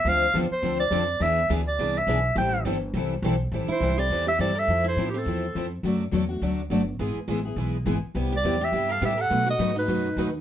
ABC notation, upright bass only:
X:1
M:4/4
L:1/8
Q:"Swing" 1/4=207
K:Am
V:1 name="Upright bass" clef=bass
D,,2 E,, z D,,2 F,,2 | E,,2 D,,2 C,,2 B,,,2 | A,,,2 G,,,2 C,,2 B,,,2 | A,,, z C,,2 E,,2 G,,2 |
F,,2 A,,2 E,,2 F,,2 | ^F,,2 E,,2 D,,2 G,,,2 | ^G,,, z A,,,2 B,,,2 G,,, z | C,,2 E,,2 G,,2 A,,2 |
B,,2 ^G,,2 ^F,,2 ^D,,2 |]